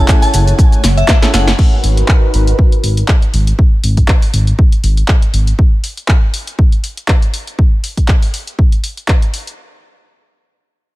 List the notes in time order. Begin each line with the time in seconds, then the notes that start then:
Already playing: A3 C#4 E4 G#4 A4 C#5 F#5 G#5 G#6
0.08 kick, clap, closed hi-hat, shaker
0.22 A5, open hi-hat, shaker
0.34 F#1, open hi-hat, shaker
0.47 closed hi-hat, shaker
0.59 kick, closed hi-hat, shaker
0.72 closed hi-hat, shaker
0.84 F#1, snare, open hi-hat, shaker
0.97 E5, closed hi-hat, shaker
1.08 E5, kick, snare, clap, closed hi-hat, shaker
1.22 C#4 E4 G#4 A4, snare, closed hi-hat, shaker
1.33 F#1 C#4 E4 G#4 A4 F#5, snare, open hi-hat, shaker
1.48 snare, closed hi-hat, shaker
1.59 D#4 F#4 A#4 B4, kick, crash
1.84 G#1, open hi-hat
1.97 closed hi-hat
2.08 kick, clap
2.34 G#1, open hi-hat
2.47 closed hi-hat
2.59 kick
2.72 closed hi-hat
2.84 G#1, open hi-hat
2.97 closed hi-hat
3.08 kick, clap
3.22 closed hi-hat
3.34 G#1, open hi-hat
3.47 closed hi-hat
3.59 kick
3.84 G#1, open hi-hat
3.97 kick, closed hi-hat
4.08 kick, clap
4.22 open hi-hat
4.34 G#1, open hi-hat
4.47 closed hi-hat
4.59 kick
4.72 closed hi-hat
4.84 G#1, open hi-hat
4.97 closed hi-hat
5.08 kick, clap
5.22 closed hi-hat
5.34 G#1, open hi-hat
5.47 closed hi-hat
5.59 kick
5.84 open hi-hat
5.97 closed hi-hat
6.08 kick, clap
6.34 open hi-hat
6.47 closed hi-hat
6.59 kick
6.72 closed hi-hat
6.84 open hi-hat
6.97 closed hi-hat
7.08 kick, clap
7.22 closed hi-hat
7.34 open hi-hat
7.47 closed hi-hat
7.59 kick
7.84 open hi-hat
7.97 kick, closed hi-hat
8.08 kick, clap
8.22 open hi-hat
8.34 open hi-hat
8.47 closed hi-hat
8.59 kick
8.72 closed hi-hat
8.84 open hi-hat
8.97 closed hi-hat
9.08 kick, clap
9.22 closed hi-hat
9.34 open hi-hat
9.47 closed hi-hat